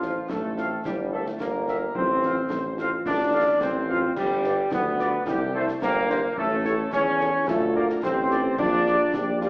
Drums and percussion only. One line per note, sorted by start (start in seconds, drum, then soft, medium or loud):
0.02 snare soft
0.29 concert bass drum medium
0.29 snare medium
0.58 snare soft
0.85 concert bass drum medium
0.85 snare medium
1.26 snare soft
1.40 concert bass drum medium
1.40 snare medium
1.68 snare soft
1.95 concert bass drum medium
2.23 snare soft
2.50 concert bass drum medium
2.50 snare medium
2.78 snare medium
3.06 concert bass drum medium
3.06 snare medium
3.61 concert bass drum medium
3.61 snare medium
4.17 concert bass drum medium
4.17 crash medium
4.44 snare medium
4.71 concert bass drum medium
4.71 snare medium
4.99 snare medium
5.27 concert bass drum medium
5.27 snare medium
5.68 snare medium
5.82 concert bass drum medium
5.82 snare medium
6.10 snare soft
6.37 concert bass drum medium
6.65 snare soft
6.93 concert bass drum medium
6.93 snare medium
7.20 snare soft
7.48 concert bass drum medium
7.48 snare medium
7.90 snare medium
8.03 concert bass drum medium
8.03 snare medium
8.31 snare soft
8.58 concert bass drum medium
8.58 crash soft
8.86 snare medium
9.14 concert bass drum medium
9.14 snare medium
9.41 snare soft